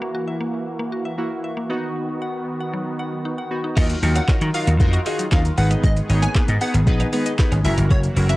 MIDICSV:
0, 0, Header, 1, 10, 480
1, 0, Start_track
1, 0, Key_signature, -6, "minor"
1, 0, Tempo, 517241
1, 1577, Time_signature, 4, 2, 24, 8
1, 7764, End_track
2, 0, Start_track
2, 0, Title_t, "Digital synth lead"
2, 0, Program_c, 0, 84
2, 3497, Note_on_c, 0, 75, 121
2, 3578, Note_off_c, 0, 75, 0
2, 3856, Note_on_c, 0, 78, 82
2, 4019, Note_off_c, 0, 78, 0
2, 4217, Note_on_c, 0, 77, 84
2, 4298, Note_off_c, 0, 77, 0
2, 4937, Note_on_c, 0, 77, 80
2, 5018, Note_off_c, 0, 77, 0
2, 5177, Note_on_c, 0, 78, 92
2, 5258, Note_off_c, 0, 78, 0
2, 5416, Note_on_c, 0, 75, 118
2, 5498, Note_off_c, 0, 75, 0
2, 5777, Note_on_c, 0, 80, 82
2, 5940, Note_off_c, 0, 80, 0
2, 6137, Note_on_c, 0, 78, 92
2, 6218, Note_off_c, 0, 78, 0
2, 7097, Note_on_c, 0, 76, 85
2, 7178, Note_off_c, 0, 76, 0
2, 7337, Note_on_c, 0, 73, 119
2, 7419, Note_off_c, 0, 73, 0
2, 7697, Note_on_c, 0, 76, 79
2, 7764, Note_off_c, 0, 76, 0
2, 7764, End_track
3, 0, Start_track
3, 0, Title_t, "Synth arpeggio sound"
3, 0, Program_c, 1, 84
3, 17, Note_on_c, 1, 58, 92
3, 95, Note_off_c, 1, 58, 0
3, 136, Note_on_c, 1, 66, 83
3, 214, Note_off_c, 1, 66, 0
3, 256, Note_on_c, 1, 76, 80
3, 334, Note_off_c, 1, 76, 0
3, 377, Note_on_c, 1, 58, 89
3, 455, Note_off_c, 1, 58, 0
3, 737, Note_on_c, 1, 58, 89
3, 815, Note_off_c, 1, 58, 0
3, 857, Note_on_c, 1, 66, 78
3, 934, Note_off_c, 1, 66, 0
3, 977, Note_on_c, 1, 76, 80
3, 1055, Note_off_c, 1, 76, 0
3, 1337, Note_on_c, 1, 76, 82
3, 1414, Note_off_c, 1, 76, 0
3, 1456, Note_on_c, 1, 58, 83
3, 1534, Note_off_c, 1, 58, 0
3, 1576, Note_on_c, 1, 63, 74
3, 1654, Note_off_c, 1, 63, 0
3, 2057, Note_on_c, 1, 78, 86
3, 2134, Note_off_c, 1, 78, 0
3, 2417, Note_on_c, 1, 78, 81
3, 2494, Note_off_c, 1, 78, 0
3, 2537, Note_on_c, 1, 54, 84
3, 2615, Note_off_c, 1, 54, 0
3, 2776, Note_on_c, 1, 78, 84
3, 2854, Note_off_c, 1, 78, 0
3, 3017, Note_on_c, 1, 63, 80
3, 3095, Note_off_c, 1, 63, 0
3, 3137, Note_on_c, 1, 78, 85
3, 3215, Note_off_c, 1, 78, 0
3, 3377, Note_on_c, 1, 63, 78
3, 3455, Note_off_c, 1, 63, 0
3, 3497, Note_on_c, 1, 77, 102
3, 3575, Note_off_c, 1, 77, 0
3, 3737, Note_on_c, 1, 54, 79
3, 3815, Note_off_c, 1, 54, 0
3, 3857, Note_on_c, 1, 77, 105
3, 3935, Note_off_c, 1, 77, 0
3, 3977, Note_on_c, 1, 75, 89
3, 4055, Note_off_c, 1, 75, 0
3, 4097, Note_on_c, 1, 54, 75
3, 4175, Note_off_c, 1, 54, 0
3, 4217, Note_on_c, 1, 77, 109
3, 4295, Note_off_c, 1, 77, 0
3, 4457, Note_on_c, 1, 54, 76
3, 4535, Note_off_c, 1, 54, 0
3, 4697, Note_on_c, 1, 75, 89
3, 4775, Note_off_c, 1, 75, 0
3, 4816, Note_on_c, 1, 54, 78
3, 4894, Note_off_c, 1, 54, 0
3, 4936, Note_on_c, 1, 77, 108
3, 5014, Note_off_c, 1, 77, 0
3, 5177, Note_on_c, 1, 56, 73
3, 5255, Note_off_c, 1, 56, 0
3, 5297, Note_on_c, 1, 75, 103
3, 5375, Note_off_c, 1, 75, 0
3, 5537, Note_on_c, 1, 56, 72
3, 5615, Note_off_c, 1, 56, 0
3, 5657, Note_on_c, 1, 75, 108
3, 5735, Note_off_c, 1, 75, 0
3, 5777, Note_on_c, 1, 71, 90
3, 5855, Note_off_c, 1, 71, 0
3, 6017, Note_on_c, 1, 75, 104
3, 6095, Note_off_c, 1, 75, 0
3, 6137, Note_on_c, 1, 71, 83
3, 6215, Note_off_c, 1, 71, 0
3, 6256, Note_on_c, 1, 56, 75
3, 6334, Note_off_c, 1, 56, 0
3, 6376, Note_on_c, 1, 75, 104
3, 6454, Note_off_c, 1, 75, 0
3, 6496, Note_on_c, 1, 71, 85
3, 6574, Note_off_c, 1, 71, 0
3, 6616, Note_on_c, 1, 56, 77
3, 6694, Note_off_c, 1, 56, 0
3, 6736, Note_on_c, 1, 75, 108
3, 6814, Note_off_c, 1, 75, 0
3, 6856, Note_on_c, 1, 71, 89
3, 6934, Note_off_c, 1, 71, 0
3, 6977, Note_on_c, 1, 56, 79
3, 7054, Note_off_c, 1, 56, 0
3, 7217, Note_on_c, 1, 70, 87
3, 7294, Note_off_c, 1, 70, 0
3, 7337, Note_on_c, 1, 76, 101
3, 7414, Note_off_c, 1, 76, 0
3, 7577, Note_on_c, 1, 54, 76
3, 7655, Note_off_c, 1, 54, 0
3, 7697, Note_on_c, 1, 76, 105
3, 7764, Note_off_c, 1, 76, 0
3, 7764, End_track
4, 0, Start_track
4, 0, Title_t, "Synth keys"
4, 0, Program_c, 2, 88
4, 0, Note_on_c, 2, 58, 73
4, 0, Note_on_c, 2, 64, 69
4, 0, Note_on_c, 2, 66, 82
4, 1060, Note_off_c, 2, 58, 0
4, 1063, Note_off_c, 2, 64, 0
4, 1065, Note_off_c, 2, 66, 0
4, 1094, Note_on_c, 2, 58, 58
4, 1096, Note_on_c, 2, 64, 51
4, 1098, Note_on_c, 2, 66, 63
4, 1570, Note_off_c, 2, 66, 0
4, 1572, Note_on_c, 2, 59, 68
4, 1575, Note_off_c, 2, 58, 0
4, 1576, Note_off_c, 2, 64, 0
4, 1576, Note_on_c, 2, 63, 64
4, 1581, Note_on_c, 2, 66, 79
4, 3221, Note_off_c, 2, 59, 0
4, 3223, Note_off_c, 2, 63, 0
4, 3225, Note_off_c, 2, 66, 0
4, 3253, Note_on_c, 2, 59, 60
4, 3255, Note_on_c, 2, 63, 54
4, 3258, Note_on_c, 2, 66, 66
4, 3483, Note_off_c, 2, 63, 0
4, 3486, Note_off_c, 2, 66, 0
4, 3494, Note_on_c, 2, 63, 93
4, 3495, Note_off_c, 2, 59, 0
4, 3495, Note_on_c, 2, 65, 87
4, 3497, Note_on_c, 2, 66, 91
4, 3498, Note_on_c, 2, 70, 109
4, 3676, Note_off_c, 2, 63, 0
4, 3677, Note_off_c, 2, 65, 0
4, 3678, Note_off_c, 2, 66, 0
4, 3678, Note_off_c, 2, 70, 0
4, 3734, Note_on_c, 2, 63, 76
4, 3735, Note_on_c, 2, 65, 72
4, 3737, Note_on_c, 2, 66, 71
4, 3738, Note_on_c, 2, 70, 83
4, 3916, Note_off_c, 2, 63, 0
4, 3917, Note_off_c, 2, 65, 0
4, 3918, Note_off_c, 2, 66, 0
4, 3918, Note_off_c, 2, 70, 0
4, 3974, Note_on_c, 2, 63, 76
4, 3975, Note_on_c, 2, 65, 72
4, 3977, Note_on_c, 2, 66, 71
4, 3978, Note_on_c, 2, 70, 87
4, 4156, Note_off_c, 2, 63, 0
4, 4157, Note_off_c, 2, 65, 0
4, 4158, Note_off_c, 2, 66, 0
4, 4158, Note_off_c, 2, 70, 0
4, 4214, Note_on_c, 2, 63, 78
4, 4216, Note_on_c, 2, 65, 72
4, 4217, Note_on_c, 2, 66, 70
4, 4219, Note_on_c, 2, 70, 85
4, 4396, Note_off_c, 2, 63, 0
4, 4397, Note_off_c, 2, 65, 0
4, 4398, Note_off_c, 2, 66, 0
4, 4399, Note_off_c, 2, 70, 0
4, 4454, Note_on_c, 2, 63, 117
4, 4456, Note_on_c, 2, 65, 116
4, 4457, Note_on_c, 2, 66, 109
4, 4459, Note_on_c, 2, 70, 127
4, 4636, Note_off_c, 2, 63, 0
4, 4637, Note_off_c, 2, 65, 0
4, 4638, Note_off_c, 2, 66, 0
4, 4639, Note_off_c, 2, 70, 0
4, 4694, Note_on_c, 2, 63, 93
4, 4696, Note_on_c, 2, 65, 87
4, 4697, Note_on_c, 2, 66, 87
4, 4699, Note_on_c, 2, 68, 102
4, 4876, Note_off_c, 2, 63, 0
4, 4877, Note_off_c, 2, 65, 0
4, 4878, Note_off_c, 2, 66, 0
4, 4879, Note_off_c, 2, 68, 0
4, 4934, Note_on_c, 2, 63, 82
4, 4936, Note_on_c, 2, 65, 77
4, 4938, Note_on_c, 2, 66, 72
4, 4939, Note_on_c, 2, 70, 87
4, 5116, Note_off_c, 2, 63, 0
4, 5117, Note_off_c, 2, 65, 0
4, 5118, Note_off_c, 2, 66, 0
4, 5119, Note_off_c, 2, 70, 0
4, 5174, Note_on_c, 2, 59, 82
4, 5175, Note_on_c, 2, 63, 78
4, 5177, Note_on_c, 2, 68, 75
4, 5178, Note_on_c, 2, 71, 92
4, 5559, Note_off_c, 2, 59, 0
4, 5560, Note_off_c, 2, 63, 0
4, 5561, Note_off_c, 2, 68, 0
4, 5562, Note_off_c, 2, 71, 0
4, 5654, Note_on_c, 2, 59, 79
4, 5656, Note_on_c, 2, 63, 73
4, 5657, Note_on_c, 2, 68, 71
4, 5659, Note_on_c, 2, 73, 91
4, 5836, Note_off_c, 2, 59, 0
4, 5837, Note_off_c, 2, 63, 0
4, 5838, Note_off_c, 2, 68, 0
4, 5839, Note_off_c, 2, 73, 0
4, 5894, Note_on_c, 2, 59, 80
4, 5896, Note_on_c, 2, 63, 70
4, 5898, Note_on_c, 2, 68, 73
4, 5899, Note_on_c, 2, 71, 88
4, 6076, Note_off_c, 2, 59, 0
4, 6077, Note_off_c, 2, 63, 0
4, 6078, Note_off_c, 2, 68, 0
4, 6079, Note_off_c, 2, 71, 0
4, 6135, Note_on_c, 2, 59, 79
4, 6136, Note_on_c, 2, 63, 72
4, 6137, Note_on_c, 2, 68, 70
4, 6139, Note_on_c, 2, 71, 90
4, 6316, Note_off_c, 2, 59, 0
4, 6317, Note_off_c, 2, 63, 0
4, 6318, Note_off_c, 2, 68, 0
4, 6319, Note_off_c, 2, 71, 0
4, 6374, Note_on_c, 2, 59, 116
4, 6376, Note_on_c, 2, 63, 113
4, 6377, Note_on_c, 2, 68, 108
4, 6378, Note_on_c, 2, 71, 127
4, 6556, Note_off_c, 2, 59, 0
4, 6557, Note_off_c, 2, 63, 0
4, 6558, Note_off_c, 2, 68, 0
4, 6558, Note_off_c, 2, 71, 0
4, 6613, Note_on_c, 2, 59, 95
4, 6615, Note_on_c, 2, 63, 88
4, 6616, Note_on_c, 2, 68, 87
4, 6618, Note_on_c, 2, 71, 105
4, 6796, Note_off_c, 2, 59, 0
4, 6796, Note_off_c, 2, 63, 0
4, 6797, Note_off_c, 2, 68, 0
4, 6798, Note_off_c, 2, 71, 0
4, 6854, Note_on_c, 2, 59, 93
4, 6855, Note_on_c, 2, 63, 86
4, 6857, Note_on_c, 2, 68, 90
4, 6859, Note_on_c, 2, 71, 101
4, 7036, Note_off_c, 2, 59, 0
4, 7037, Note_off_c, 2, 63, 0
4, 7038, Note_off_c, 2, 68, 0
4, 7039, Note_off_c, 2, 71, 0
4, 7094, Note_on_c, 2, 61, 90
4, 7095, Note_on_c, 2, 64, 80
4, 7097, Note_on_c, 2, 66, 79
4, 7099, Note_on_c, 2, 70, 93
4, 7479, Note_off_c, 2, 61, 0
4, 7480, Note_off_c, 2, 64, 0
4, 7481, Note_off_c, 2, 66, 0
4, 7482, Note_off_c, 2, 70, 0
4, 7575, Note_on_c, 2, 61, 84
4, 7576, Note_on_c, 2, 64, 73
4, 7578, Note_on_c, 2, 66, 74
4, 7579, Note_on_c, 2, 70, 92
4, 7757, Note_off_c, 2, 61, 0
4, 7757, Note_off_c, 2, 64, 0
4, 7758, Note_off_c, 2, 66, 0
4, 7759, Note_off_c, 2, 70, 0
4, 7764, End_track
5, 0, Start_track
5, 0, Title_t, "Clean electric guitar"
5, 0, Program_c, 3, 27
5, 3496, Note_on_c, 3, 63, 90
5, 3598, Note_off_c, 3, 63, 0
5, 3857, Note_on_c, 3, 61, 86
5, 3958, Note_off_c, 3, 61, 0
5, 3976, Note_on_c, 3, 61, 85
5, 4078, Note_off_c, 3, 61, 0
5, 4337, Note_on_c, 3, 63, 82
5, 4438, Note_off_c, 3, 63, 0
5, 4577, Note_on_c, 3, 66, 80
5, 4678, Note_off_c, 3, 66, 0
5, 4697, Note_on_c, 3, 63, 89
5, 4798, Note_off_c, 3, 63, 0
5, 4937, Note_on_c, 3, 61, 76
5, 5038, Note_off_c, 3, 61, 0
5, 5297, Note_on_c, 3, 59, 85
5, 5398, Note_off_c, 3, 59, 0
5, 5417, Note_on_c, 3, 56, 94
5, 5518, Note_off_c, 3, 56, 0
5, 5777, Note_on_c, 3, 58, 80
5, 5878, Note_off_c, 3, 58, 0
5, 5896, Note_on_c, 3, 58, 96
5, 5998, Note_off_c, 3, 58, 0
5, 6257, Note_on_c, 3, 59, 86
5, 6358, Note_off_c, 3, 59, 0
5, 6497, Note_on_c, 3, 63, 85
5, 6598, Note_off_c, 3, 63, 0
5, 6617, Note_on_c, 3, 59, 79
5, 6718, Note_off_c, 3, 59, 0
5, 6977, Note_on_c, 3, 61, 77
5, 7078, Note_off_c, 3, 61, 0
5, 7217, Note_on_c, 3, 63, 84
5, 7318, Note_off_c, 3, 63, 0
5, 7337, Note_on_c, 3, 66, 90
5, 7438, Note_off_c, 3, 66, 0
5, 7697, Note_on_c, 3, 61, 89
5, 7764, Note_off_c, 3, 61, 0
5, 7764, End_track
6, 0, Start_track
6, 0, Title_t, "Supersaw synth"
6, 0, Program_c, 4, 81
6, 0, Note_on_c, 4, 52, 72
6, 0, Note_on_c, 4, 58, 67
6, 0, Note_on_c, 4, 66, 78
6, 1555, Note_off_c, 4, 52, 0
6, 1555, Note_off_c, 4, 58, 0
6, 1576, Note_on_c, 4, 51, 78
6, 1577, Note_on_c, 4, 59, 69
6, 3459, Note_off_c, 4, 66, 0
6, 3477, Note_off_c, 4, 51, 0
6, 3477, Note_off_c, 4, 59, 0
6, 3497, Note_on_c, 4, 51, 81
6, 3497, Note_on_c, 4, 65, 91
6, 3498, Note_on_c, 4, 54, 74
6, 5160, Note_off_c, 4, 54, 0
6, 5160, Note_off_c, 4, 65, 0
6, 5176, Note_on_c, 4, 59, 71
6, 5176, Note_on_c, 4, 68, 89
6, 7061, Note_off_c, 4, 51, 0
6, 7077, Note_off_c, 4, 59, 0
6, 7077, Note_off_c, 4, 68, 0
6, 7097, Note_on_c, 4, 52, 79
6, 7097, Note_on_c, 4, 58, 72
6, 7097, Note_on_c, 4, 66, 85
6, 7764, Note_off_c, 4, 52, 0
6, 7764, Note_off_c, 4, 58, 0
6, 7764, Note_off_c, 4, 66, 0
6, 7764, End_track
7, 0, Start_track
7, 0, Title_t, "Slap bass"
7, 0, Program_c, 5, 36
7, 3497, Note_on_c, 5, 39, 106
7, 3645, Note_off_c, 5, 39, 0
7, 3736, Note_on_c, 5, 39, 96
7, 3885, Note_off_c, 5, 39, 0
7, 4096, Note_on_c, 5, 51, 104
7, 4170, Note_off_c, 5, 51, 0
7, 4337, Note_on_c, 5, 39, 93
7, 4411, Note_off_c, 5, 39, 0
7, 4455, Note_on_c, 5, 41, 92
7, 4604, Note_off_c, 5, 41, 0
7, 4938, Note_on_c, 5, 39, 99
7, 5086, Note_off_c, 5, 39, 0
7, 5177, Note_on_c, 5, 32, 96
7, 5325, Note_off_c, 5, 32, 0
7, 5417, Note_on_c, 5, 32, 97
7, 5565, Note_off_c, 5, 32, 0
7, 5657, Note_on_c, 5, 32, 98
7, 5805, Note_off_c, 5, 32, 0
7, 6017, Note_on_c, 5, 44, 103
7, 6091, Note_off_c, 5, 44, 0
7, 6257, Note_on_c, 5, 32, 95
7, 6331, Note_off_c, 5, 32, 0
7, 6375, Note_on_c, 5, 34, 103
7, 6524, Note_off_c, 5, 34, 0
7, 6978, Note_on_c, 5, 32, 97
7, 7051, Note_off_c, 5, 32, 0
7, 7098, Note_on_c, 5, 30, 97
7, 7171, Note_off_c, 5, 30, 0
7, 7217, Note_on_c, 5, 31, 101
7, 7291, Note_off_c, 5, 31, 0
7, 7337, Note_on_c, 5, 30, 109
7, 7485, Note_off_c, 5, 30, 0
7, 7577, Note_on_c, 5, 30, 105
7, 7725, Note_off_c, 5, 30, 0
7, 7764, End_track
8, 0, Start_track
8, 0, Title_t, "Muted clean electric guitar strokes"
8, 3737, Note_on_c, 9, 29, 47
8, 3830, Note_off_c, 9, 29, 0
8, 4097, Note_on_c, 9, 29, 47
8, 4189, Note_off_c, 9, 29, 0
8, 4457, Note_on_c, 9, 29, 45
8, 4550, Note_off_c, 9, 29, 0
8, 5177, Note_on_c, 9, 29, 47
8, 5270, Note_off_c, 9, 29, 0
8, 5657, Note_on_c, 9, 29, 45
8, 5750, Note_off_c, 9, 29, 0
8, 6017, Note_on_c, 9, 29, 46
8, 6109, Note_off_c, 9, 29, 0
8, 6377, Note_on_c, 9, 29, 47
8, 6469, Note_off_c, 9, 29, 0
8, 7097, Note_on_c, 9, 29, 47
8, 7190, Note_off_c, 9, 29, 0
8, 7577, Note_on_c, 9, 29, 48
8, 7670, Note_off_c, 9, 29, 0
8, 7764, End_track
9, 0, Start_track
9, 0, Title_t, "Muted slap bass strokes"
9, 3976, Note_on_c, 9, 29, 49
9, 4069, Note_off_c, 9, 29, 0
9, 5896, Note_on_c, 9, 29, 52
9, 5989, Note_off_c, 9, 29, 0
9, 7764, End_track
10, 0, Start_track
10, 0, Title_t, "Drums"
10, 3496, Note_on_c, 9, 82, 73
10, 3497, Note_on_c, 9, 36, 118
10, 3497, Note_on_c, 9, 49, 99
10, 3589, Note_off_c, 9, 36, 0
10, 3589, Note_off_c, 9, 49, 0
10, 3589, Note_off_c, 9, 82, 0
10, 3616, Note_on_c, 9, 42, 52
10, 3616, Note_on_c, 9, 82, 51
10, 3709, Note_off_c, 9, 42, 0
10, 3709, Note_off_c, 9, 82, 0
10, 3738, Note_on_c, 9, 46, 74
10, 3738, Note_on_c, 9, 82, 51
10, 3831, Note_off_c, 9, 46, 0
10, 3831, Note_off_c, 9, 82, 0
10, 3856, Note_on_c, 9, 42, 77
10, 3856, Note_on_c, 9, 82, 78
10, 3949, Note_off_c, 9, 42, 0
10, 3949, Note_off_c, 9, 82, 0
10, 3976, Note_on_c, 9, 36, 120
10, 3976, Note_on_c, 9, 39, 122
10, 3978, Note_on_c, 9, 82, 79
10, 3980, Note_on_c, 9, 38, 92
10, 4068, Note_off_c, 9, 39, 0
10, 4069, Note_off_c, 9, 36, 0
10, 4071, Note_off_c, 9, 82, 0
10, 4073, Note_off_c, 9, 38, 0
10, 4096, Note_on_c, 9, 42, 53
10, 4096, Note_on_c, 9, 82, 53
10, 4188, Note_off_c, 9, 42, 0
10, 4188, Note_off_c, 9, 82, 0
10, 4214, Note_on_c, 9, 46, 81
10, 4214, Note_on_c, 9, 82, 59
10, 4307, Note_off_c, 9, 46, 0
10, 4307, Note_off_c, 9, 82, 0
10, 4338, Note_on_c, 9, 42, 86
10, 4338, Note_on_c, 9, 82, 86
10, 4430, Note_off_c, 9, 42, 0
10, 4430, Note_off_c, 9, 82, 0
10, 4455, Note_on_c, 9, 36, 113
10, 4456, Note_on_c, 9, 82, 78
10, 4548, Note_off_c, 9, 36, 0
10, 4548, Note_off_c, 9, 82, 0
10, 4576, Note_on_c, 9, 42, 50
10, 4576, Note_on_c, 9, 82, 51
10, 4668, Note_off_c, 9, 42, 0
10, 4668, Note_off_c, 9, 82, 0
10, 4695, Note_on_c, 9, 46, 76
10, 4695, Note_on_c, 9, 82, 54
10, 4788, Note_off_c, 9, 46, 0
10, 4788, Note_off_c, 9, 82, 0
10, 4818, Note_on_c, 9, 42, 77
10, 4818, Note_on_c, 9, 82, 81
10, 4911, Note_off_c, 9, 42, 0
10, 4911, Note_off_c, 9, 82, 0
10, 4936, Note_on_c, 9, 39, 123
10, 4938, Note_on_c, 9, 36, 124
10, 4938, Note_on_c, 9, 82, 75
10, 4941, Note_on_c, 9, 38, 93
10, 5029, Note_off_c, 9, 39, 0
10, 5031, Note_off_c, 9, 36, 0
10, 5031, Note_off_c, 9, 82, 0
10, 5034, Note_off_c, 9, 38, 0
10, 5058, Note_on_c, 9, 42, 56
10, 5058, Note_on_c, 9, 82, 58
10, 5151, Note_off_c, 9, 42, 0
10, 5151, Note_off_c, 9, 82, 0
10, 5176, Note_on_c, 9, 46, 73
10, 5176, Note_on_c, 9, 82, 53
10, 5268, Note_off_c, 9, 46, 0
10, 5268, Note_off_c, 9, 82, 0
10, 5297, Note_on_c, 9, 42, 72
10, 5297, Note_on_c, 9, 82, 72
10, 5390, Note_off_c, 9, 42, 0
10, 5390, Note_off_c, 9, 82, 0
10, 5417, Note_on_c, 9, 36, 121
10, 5417, Note_on_c, 9, 82, 72
10, 5510, Note_off_c, 9, 36, 0
10, 5510, Note_off_c, 9, 82, 0
10, 5536, Note_on_c, 9, 42, 50
10, 5536, Note_on_c, 9, 82, 50
10, 5629, Note_off_c, 9, 42, 0
10, 5629, Note_off_c, 9, 82, 0
10, 5658, Note_on_c, 9, 46, 73
10, 5658, Note_on_c, 9, 82, 52
10, 5751, Note_off_c, 9, 46, 0
10, 5751, Note_off_c, 9, 82, 0
10, 5776, Note_on_c, 9, 42, 79
10, 5776, Note_on_c, 9, 82, 81
10, 5869, Note_off_c, 9, 42, 0
10, 5869, Note_off_c, 9, 82, 0
10, 5896, Note_on_c, 9, 36, 124
10, 5896, Note_on_c, 9, 39, 118
10, 5898, Note_on_c, 9, 82, 78
10, 5900, Note_on_c, 9, 38, 97
10, 5988, Note_off_c, 9, 39, 0
10, 5989, Note_off_c, 9, 36, 0
10, 5991, Note_off_c, 9, 82, 0
10, 5993, Note_off_c, 9, 38, 0
10, 6015, Note_on_c, 9, 42, 52
10, 6015, Note_on_c, 9, 82, 54
10, 6108, Note_off_c, 9, 42, 0
10, 6108, Note_off_c, 9, 82, 0
10, 6134, Note_on_c, 9, 46, 83
10, 6134, Note_on_c, 9, 82, 58
10, 6227, Note_off_c, 9, 46, 0
10, 6227, Note_off_c, 9, 82, 0
10, 6258, Note_on_c, 9, 42, 86
10, 6258, Note_on_c, 9, 82, 86
10, 6351, Note_off_c, 9, 42, 0
10, 6351, Note_off_c, 9, 82, 0
10, 6375, Note_on_c, 9, 36, 116
10, 6375, Note_on_c, 9, 82, 77
10, 6468, Note_off_c, 9, 36, 0
10, 6468, Note_off_c, 9, 82, 0
10, 6496, Note_on_c, 9, 42, 54
10, 6496, Note_on_c, 9, 82, 53
10, 6588, Note_off_c, 9, 42, 0
10, 6588, Note_off_c, 9, 82, 0
10, 6615, Note_on_c, 9, 46, 75
10, 6615, Note_on_c, 9, 82, 55
10, 6707, Note_off_c, 9, 46, 0
10, 6707, Note_off_c, 9, 82, 0
10, 6738, Note_on_c, 9, 42, 77
10, 6738, Note_on_c, 9, 82, 75
10, 6831, Note_off_c, 9, 42, 0
10, 6831, Note_off_c, 9, 82, 0
10, 6856, Note_on_c, 9, 39, 123
10, 6858, Note_on_c, 9, 36, 127
10, 6858, Note_on_c, 9, 82, 80
10, 6861, Note_on_c, 9, 38, 97
10, 6949, Note_off_c, 9, 39, 0
10, 6951, Note_off_c, 9, 36, 0
10, 6951, Note_off_c, 9, 82, 0
10, 6953, Note_off_c, 9, 38, 0
10, 6978, Note_on_c, 9, 42, 57
10, 6978, Note_on_c, 9, 82, 55
10, 7071, Note_off_c, 9, 42, 0
10, 7071, Note_off_c, 9, 82, 0
10, 7095, Note_on_c, 9, 46, 74
10, 7095, Note_on_c, 9, 82, 53
10, 7188, Note_off_c, 9, 46, 0
10, 7188, Note_off_c, 9, 82, 0
10, 7217, Note_on_c, 9, 42, 72
10, 7217, Note_on_c, 9, 82, 70
10, 7310, Note_off_c, 9, 42, 0
10, 7310, Note_off_c, 9, 82, 0
10, 7336, Note_on_c, 9, 82, 69
10, 7337, Note_on_c, 9, 36, 117
10, 7429, Note_off_c, 9, 82, 0
10, 7430, Note_off_c, 9, 36, 0
10, 7456, Note_on_c, 9, 42, 52
10, 7456, Note_on_c, 9, 82, 52
10, 7549, Note_off_c, 9, 42, 0
10, 7549, Note_off_c, 9, 82, 0
10, 7578, Note_on_c, 9, 46, 74
10, 7578, Note_on_c, 9, 82, 54
10, 7671, Note_off_c, 9, 46, 0
10, 7671, Note_off_c, 9, 82, 0
10, 7696, Note_on_c, 9, 42, 79
10, 7696, Note_on_c, 9, 82, 79
10, 7764, Note_off_c, 9, 42, 0
10, 7764, Note_off_c, 9, 82, 0
10, 7764, End_track
0, 0, End_of_file